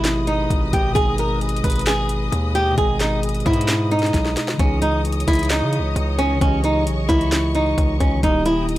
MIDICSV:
0, 0, Header, 1, 6, 480
1, 0, Start_track
1, 0, Key_signature, 5, "minor"
1, 0, Tempo, 454545
1, 1013, Time_signature, 4, 2, 24, 8
1, 9276, End_track
2, 0, Start_track
2, 0, Title_t, "String section"
2, 0, Program_c, 0, 48
2, 0, Note_on_c, 0, 71, 83
2, 0, Note_on_c, 0, 75, 75
2, 0, Note_on_c, 0, 87, 95
2, 4810, Note_off_c, 0, 87, 0
2, 4811, Note_off_c, 0, 71, 0
2, 4811, Note_off_c, 0, 75, 0
2, 4851, Note_on_c, 0, 87, 94
2, 4852, Note_on_c, 0, 73, 85
2, 4852, Note_on_c, 0, 75, 76
2, 6753, Note_off_c, 0, 87, 0
2, 6773, Note_on_c, 0, 85, 92
2, 8654, Note_off_c, 0, 73, 0
2, 8654, Note_off_c, 0, 75, 0
2, 8674, Note_off_c, 0, 85, 0
2, 8693, Note_on_c, 0, 70, 87
2, 8693, Note_on_c, 0, 75, 76
2, 8693, Note_on_c, 0, 79, 80
2, 8694, Note_on_c, 0, 87, 95
2, 9276, Note_off_c, 0, 70, 0
2, 9276, Note_off_c, 0, 75, 0
2, 9276, Note_off_c, 0, 79, 0
2, 9276, Note_off_c, 0, 87, 0
2, 9276, End_track
3, 0, Start_track
3, 0, Title_t, "Nylon-string guitar"
3, 0, Program_c, 1, 24
3, 0, Note_on_c, 1, 64, 84
3, 262, Note_off_c, 1, 64, 0
3, 289, Note_on_c, 1, 63, 80
3, 742, Note_off_c, 1, 63, 0
3, 773, Note_on_c, 1, 67, 78
3, 972, Note_off_c, 1, 67, 0
3, 1003, Note_on_c, 1, 68, 96
3, 1205, Note_off_c, 1, 68, 0
3, 1258, Note_on_c, 1, 70, 74
3, 1454, Note_off_c, 1, 70, 0
3, 1732, Note_on_c, 1, 71, 78
3, 1931, Note_off_c, 1, 71, 0
3, 1973, Note_on_c, 1, 68, 98
3, 2650, Note_off_c, 1, 68, 0
3, 2693, Note_on_c, 1, 67, 87
3, 2891, Note_off_c, 1, 67, 0
3, 2932, Note_on_c, 1, 68, 80
3, 3131, Note_off_c, 1, 68, 0
3, 3176, Note_on_c, 1, 63, 90
3, 3373, Note_off_c, 1, 63, 0
3, 3657, Note_on_c, 1, 64, 86
3, 4106, Note_off_c, 1, 64, 0
3, 4134, Note_on_c, 1, 63, 87
3, 4811, Note_off_c, 1, 63, 0
3, 4850, Note_on_c, 1, 61, 86
3, 5050, Note_off_c, 1, 61, 0
3, 5088, Note_on_c, 1, 63, 79
3, 5288, Note_off_c, 1, 63, 0
3, 5572, Note_on_c, 1, 64, 88
3, 5771, Note_off_c, 1, 64, 0
3, 5810, Note_on_c, 1, 63, 89
3, 6489, Note_off_c, 1, 63, 0
3, 6531, Note_on_c, 1, 61, 95
3, 6730, Note_off_c, 1, 61, 0
3, 6771, Note_on_c, 1, 61, 91
3, 6970, Note_off_c, 1, 61, 0
3, 7015, Note_on_c, 1, 63, 85
3, 7213, Note_off_c, 1, 63, 0
3, 7483, Note_on_c, 1, 64, 83
3, 7939, Note_off_c, 1, 64, 0
3, 7974, Note_on_c, 1, 63, 78
3, 8425, Note_off_c, 1, 63, 0
3, 8450, Note_on_c, 1, 61, 79
3, 8650, Note_off_c, 1, 61, 0
3, 8698, Note_on_c, 1, 63, 93
3, 8894, Note_off_c, 1, 63, 0
3, 8930, Note_on_c, 1, 64, 79
3, 9130, Note_off_c, 1, 64, 0
3, 9276, End_track
4, 0, Start_track
4, 0, Title_t, "Tine electric piano"
4, 0, Program_c, 2, 4
4, 0, Control_c, 2, 64, 127
4, 0, Note_on_c, 2, 47, 68
4, 0, Note_on_c, 2, 56, 63
4, 0, Note_on_c, 2, 67, 76
4, 0, Note_on_c, 2, 75, 61
4, 937, Note_off_c, 2, 47, 0
4, 950, Note_on_c, 2, 47, 64
4, 962, Note_off_c, 2, 56, 0
4, 983, Note_off_c, 2, 75, 0
4, 990, Note_on_c, 2, 56, 65
4, 1004, Note_off_c, 2, 67, 0
4, 1031, Note_on_c, 2, 63, 63
4, 1072, Note_on_c, 2, 68, 71
4, 2858, Note_off_c, 2, 47, 0
4, 2871, Note_on_c, 2, 47, 65
4, 2883, Note_off_c, 2, 56, 0
4, 2903, Note_off_c, 2, 63, 0
4, 2912, Note_on_c, 2, 56, 60
4, 2924, Note_off_c, 2, 68, 0
4, 2953, Note_on_c, 2, 75, 61
4, 2993, Note_on_c, 2, 68, 74
4, 4783, Note_off_c, 2, 47, 0
4, 4791, Note_on_c, 2, 49, 70
4, 4804, Note_off_c, 2, 56, 0
4, 4824, Note_off_c, 2, 75, 0
4, 4831, Note_on_c, 2, 52, 59
4, 4845, Note_off_c, 2, 68, 0
4, 4866, Control_c, 2, 64, 0
4, 4872, Note_on_c, 2, 63, 67
4, 4913, Note_on_c, 2, 68, 79
4, 5066, Control_c, 2, 64, 127
4, 6699, Note_off_c, 2, 49, 0
4, 6712, Note_on_c, 2, 49, 68
4, 6723, Note_off_c, 2, 52, 0
4, 6744, Note_off_c, 2, 63, 0
4, 6753, Note_on_c, 2, 52, 65
4, 6765, Note_off_c, 2, 68, 0
4, 6794, Note_on_c, 2, 75, 61
4, 6834, Note_on_c, 2, 67, 74
4, 8623, Note_off_c, 2, 49, 0
4, 8629, Note_on_c, 2, 51, 68
4, 8644, Note_off_c, 2, 52, 0
4, 8665, Note_off_c, 2, 75, 0
4, 8670, Note_on_c, 2, 55, 58
4, 8686, Note_off_c, 2, 67, 0
4, 8707, Control_c, 2, 64, 0
4, 8712, Note_on_c, 2, 58, 60
4, 8752, Note_on_c, 2, 67, 73
4, 8876, Control_c, 2, 64, 127
4, 9276, Note_off_c, 2, 51, 0
4, 9276, Note_off_c, 2, 55, 0
4, 9276, Note_off_c, 2, 58, 0
4, 9276, Note_off_c, 2, 67, 0
4, 9276, End_track
5, 0, Start_track
5, 0, Title_t, "808-style bass"
5, 0, Program_c, 3, 38
5, 0, Note_on_c, 3, 32, 105
5, 503, Note_off_c, 3, 32, 0
5, 533, Note_on_c, 3, 32, 106
5, 763, Note_off_c, 3, 32, 0
5, 772, Note_on_c, 3, 32, 105
5, 1003, Note_off_c, 3, 32, 0
5, 1013, Note_on_c, 3, 32, 110
5, 1704, Note_off_c, 3, 32, 0
5, 1732, Note_on_c, 3, 32, 100
5, 2424, Note_off_c, 3, 32, 0
5, 2452, Note_on_c, 3, 39, 102
5, 2913, Note_off_c, 3, 39, 0
5, 2933, Note_on_c, 3, 32, 112
5, 3624, Note_off_c, 3, 32, 0
5, 3652, Note_on_c, 3, 44, 100
5, 4343, Note_off_c, 3, 44, 0
5, 4372, Note_on_c, 3, 35, 107
5, 4603, Note_off_c, 3, 35, 0
5, 4852, Note_on_c, 3, 37, 113
5, 5543, Note_off_c, 3, 37, 0
5, 5572, Note_on_c, 3, 37, 104
5, 5932, Note_on_c, 3, 49, 98
5, 5948, Note_off_c, 3, 37, 0
5, 6113, Note_on_c, 3, 37, 98
5, 6129, Note_off_c, 3, 49, 0
5, 6284, Note_off_c, 3, 37, 0
5, 6292, Note_on_c, 3, 37, 107
5, 6753, Note_off_c, 3, 37, 0
5, 6773, Note_on_c, 3, 37, 104
5, 7254, Note_on_c, 3, 35, 97
5, 7270, Note_off_c, 3, 37, 0
5, 7481, Note_off_c, 3, 35, 0
5, 7493, Note_on_c, 3, 37, 106
5, 8184, Note_off_c, 3, 37, 0
5, 8213, Note_on_c, 3, 37, 106
5, 8443, Note_off_c, 3, 37, 0
5, 8453, Note_on_c, 3, 37, 105
5, 8683, Note_off_c, 3, 37, 0
5, 8693, Note_on_c, 3, 27, 109
5, 9276, Note_off_c, 3, 27, 0
5, 9276, End_track
6, 0, Start_track
6, 0, Title_t, "Drums"
6, 50, Note_on_c, 9, 39, 94
6, 50, Note_on_c, 9, 42, 81
6, 52, Note_on_c, 9, 38, 122
6, 156, Note_off_c, 9, 39, 0
6, 156, Note_off_c, 9, 42, 0
6, 158, Note_off_c, 9, 38, 0
6, 288, Note_on_c, 9, 42, 68
6, 394, Note_off_c, 9, 42, 0
6, 533, Note_on_c, 9, 36, 96
6, 534, Note_on_c, 9, 42, 83
6, 638, Note_off_c, 9, 36, 0
6, 640, Note_off_c, 9, 42, 0
6, 772, Note_on_c, 9, 42, 79
6, 773, Note_on_c, 9, 36, 99
6, 878, Note_off_c, 9, 36, 0
6, 878, Note_off_c, 9, 42, 0
6, 1013, Note_on_c, 9, 36, 115
6, 1013, Note_on_c, 9, 42, 82
6, 1118, Note_off_c, 9, 36, 0
6, 1118, Note_off_c, 9, 42, 0
6, 1248, Note_on_c, 9, 42, 76
6, 1354, Note_off_c, 9, 42, 0
6, 1493, Note_on_c, 9, 42, 67
6, 1572, Note_off_c, 9, 42, 0
6, 1572, Note_on_c, 9, 42, 66
6, 1652, Note_off_c, 9, 42, 0
6, 1652, Note_on_c, 9, 42, 66
6, 1732, Note_on_c, 9, 36, 93
6, 1733, Note_off_c, 9, 42, 0
6, 1733, Note_on_c, 9, 42, 83
6, 1793, Note_off_c, 9, 42, 0
6, 1793, Note_on_c, 9, 42, 70
6, 1813, Note_off_c, 9, 42, 0
6, 1813, Note_on_c, 9, 42, 70
6, 1838, Note_off_c, 9, 36, 0
6, 1854, Note_off_c, 9, 42, 0
6, 1854, Note_on_c, 9, 42, 60
6, 1894, Note_off_c, 9, 42, 0
6, 1894, Note_on_c, 9, 42, 68
6, 1914, Note_off_c, 9, 42, 0
6, 1914, Note_on_c, 9, 42, 50
6, 1972, Note_off_c, 9, 42, 0
6, 1972, Note_on_c, 9, 39, 96
6, 1972, Note_on_c, 9, 42, 84
6, 1974, Note_on_c, 9, 38, 120
6, 2077, Note_off_c, 9, 39, 0
6, 2078, Note_off_c, 9, 42, 0
6, 2079, Note_off_c, 9, 38, 0
6, 2209, Note_on_c, 9, 42, 73
6, 2314, Note_off_c, 9, 42, 0
6, 2455, Note_on_c, 9, 42, 84
6, 2561, Note_off_c, 9, 42, 0
6, 2693, Note_on_c, 9, 42, 74
6, 2799, Note_off_c, 9, 42, 0
6, 2933, Note_on_c, 9, 36, 114
6, 2933, Note_on_c, 9, 42, 77
6, 3038, Note_off_c, 9, 36, 0
6, 3038, Note_off_c, 9, 42, 0
6, 3169, Note_on_c, 9, 42, 76
6, 3172, Note_on_c, 9, 39, 75
6, 3174, Note_on_c, 9, 38, 93
6, 3274, Note_off_c, 9, 42, 0
6, 3278, Note_off_c, 9, 39, 0
6, 3280, Note_off_c, 9, 38, 0
6, 3413, Note_on_c, 9, 42, 82
6, 3473, Note_off_c, 9, 42, 0
6, 3473, Note_on_c, 9, 42, 69
6, 3533, Note_off_c, 9, 42, 0
6, 3533, Note_on_c, 9, 42, 55
6, 3592, Note_off_c, 9, 42, 0
6, 3592, Note_on_c, 9, 42, 47
6, 3652, Note_off_c, 9, 42, 0
6, 3652, Note_on_c, 9, 36, 90
6, 3652, Note_on_c, 9, 42, 49
6, 3733, Note_off_c, 9, 42, 0
6, 3733, Note_on_c, 9, 42, 68
6, 3757, Note_off_c, 9, 36, 0
6, 3812, Note_off_c, 9, 42, 0
6, 3812, Note_on_c, 9, 42, 84
6, 3890, Note_off_c, 9, 42, 0
6, 3890, Note_on_c, 9, 39, 97
6, 3890, Note_on_c, 9, 42, 82
6, 3892, Note_on_c, 9, 38, 115
6, 3995, Note_off_c, 9, 39, 0
6, 3996, Note_off_c, 9, 42, 0
6, 3997, Note_off_c, 9, 38, 0
6, 4133, Note_on_c, 9, 42, 42
6, 4212, Note_off_c, 9, 42, 0
6, 4212, Note_on_c, 9, 42, 57
6, 4252, Note_on_c, 9, 38, 73
6, 4292, Note_off_c, 9, 42, 0
6, 4292, Note_on_c, 9, 42, 70
6, 4358, Note_off_c, 9, 38, 0
6, 4372, Note_on_c, 9, 36, 94
6, 4372, Note_on_c, 9, 38, 60
6, 4373, Note_off_c, 9, 42, 0
6, 4373, Note_on_c, 9, 42, 81
6, 4477, Note_off_c, 9, 36, 0
6, 4477, Note_off_c, 9, 38, 0
6, 4479, Note_off_c, 9, 42, 0
6, 4492, Note_on_c, 9, 38, 66
6, 4598, Note_off_c, 9, 38, 0
6, 4612, Note_on_c, 9, 38, 96
6, 4612, Note_on_c, 9, 42, 78
6, 4717, Note_off_c, 9, 38, 0
6, 4717, Note_off_c, 9, 42, 0
6, 4732, Note_on_c, 9, 38, 92
6, 4837, Note_off_c, 9, 38, 0
6, 4852, Note_on_c, 9, 36, 116
6, 4852, Note_on_c, 9, 42, 83
6, 4957, Note_off_c, 9, 36, 0
6, 4958, Note_off_c, 9, 42, 0
6, 5087, Note_on_c, 9, 42, 78
6, 5193, Note_off_c, 9, 42, 0
6, 5332, Note_on_c, 9, 42, 70
6, 5412, Note_off_c, 9, 42, 0
6, 5412, Note_on_c, 9, 42, 69
6, 5492, Note_off_c, 9, 42, 0
6, 5492, Note_on_c, 9, 42, 67
6, 5572, Note_off_c, 9, 42, 0
6, 5572, Note_on_c, 9, 36, 91
6, 5572, Note_on_c, 9, 42, 83
6, 5633, Note_off_c, 9, 42, 0
6, 5633, Note_on_c, 9, 42, 71
6, 5652, Note_off_c, 9, 42, 0
6, 5652, Note_on_c, 9, 42, 68
6, 5677, Note_off_c, 9, 36, 0
6, 5692, Note_off_c, 9, 42, 0
6, 5692, Note_on_c, 9, 42, 61
6, 5732, Note_off_c, 9, 42, 0
6, 5732, Note_on_c, 9, 42, 70
6, 5753, Note_off_c, 9, 42, 0
6, 5753, Note_on_c, 9, 42, 48
6, 5810, Note_off_c, 9, 42, 0
6, 5810, Note_on_c, 9, 39, 95
6, 5810, Note_on_c, 9, 42, 84
6, 5812, Note_on_c, 9, 38, 118
6, 5916, Note_off_c, 9, 39, 0
6, 5916, Note_off_c, 9, 42, 0
6, 5918, Note_off_c, 9, 38, 0
6, 6048, Note_on_c, 9, 42, 72
6, 6153, Note_off_c, 9, 42, 0
6, 6295, Note_on_c, 9, 42, 80
6, 6400, Note_off_c, 9, 42, 0
6, 6533, Note_on_c, 9, 42, 74
6, 6638, Note_off_c, 9, 42, 0
6, 6773, Note_on_c, 9, 36, 112
6, 6773, Note_on_c, 9, 42, 78
6, 6878, Note_off_c, 9, 36, 0
6, 6879, Note_off_c, 9, 42, 0
6, 7009, Note_on_c, 9, 42, 79
6, 7114, Note_off_c, 9, 42, 0
6, 7253, Note_on_c, 9, 42, 79
6, 7359, Note_off_c, 9, 42, 0
6, 7493, Note_on_c, 9, 36, 91
6, 7493, Note_on_c, 9, 42, 79
6, 7598, Note_off_c, 9, 36, 0
6, 7599, Note_off_c, 9, 42, 0
6, 7613, Note_on_c, 9, 42, 47
6, 7719, Note_off_c, 9, 42, 0
6, 7732, Note_on_c, 9, 39, 91
6, 7732, Note_on_c, 9, 42, 82
6, 7734, Note_on_c, 9, 38, 116
6, 7838, Note_off_c, 9, 39, 0
6, 7838, Note_off_c, 9, 42, 0
6, 7840, Note_off_c, 9, 38, 0
6, 7969, Note_on_c, 9, 42, 67
6, 8075, Note_off_c, 9, 42, 0
6, 8213, Note_on_c, 9, 36, 95
6, 8215, Note_on_c, 9, 42, 81
6, 8319, Note_off_c, 9, 36, 0
6, 8320, Note_off_c, 9, 42, 0
6, 8453, Note_on_c, 9, 36, 98
6, 8453, Note_on_c, 9, 42, 80
6, 8559, Note_off_c, 9, 36, 0
6, 8559, Note_off_c, 9, 42, 0
6, 8693, Note_on_c, 9, 36, 115
6, 8694, Note_on_c, 9, 42, 81
6, 8799, Note_off_c, 9, 36, 0
6, 8799, Note_off_c, 9, 42, 0
6, 8929, Note_on_c, 9, 42, 78
6, 9035, Note_off_c, 9, 42, 0
6, 9173, Note_on_c, 9, 42, 67
6, 9276, Note_off_c, 9, 42, 0
6, 9276, End_track
0, 0, End_of_file